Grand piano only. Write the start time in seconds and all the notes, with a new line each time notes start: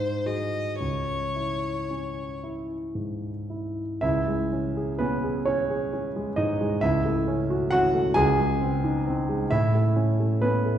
Already playing: G#2 D#4
0.26 F#4 G#4
0.80 C#2
1.36 E4
1.91 C#4
2.43 E4
2.95 G#2
3.50 E4
4.01 C#2 E4 E5
4.28 G#3
4.53 C#4
4.77 G#4
4.99 B3 C#4 B4
5.24 G#4
5.45 C#4 C#5
5.70 G#4
5.93 C#4
6.16 G#3
6.36 G#2 D#4 D#5
6.61 G#3
6.81 C#2 E4 E5
7.06 A3
7.28 C#4
7.50 F#4
7.71 C#4 F#4 F#5
7.94 A3
8.14 C#2 G#4 G#5
8.39 G#3
8.62 C4
8.84 D#4
9.07 C4
9.29 G#3
9.51 A2 E4 E5
9.75 A3
9.96 C#4
10.20 A3
10.41 B3 C#4 B4
10.66 A3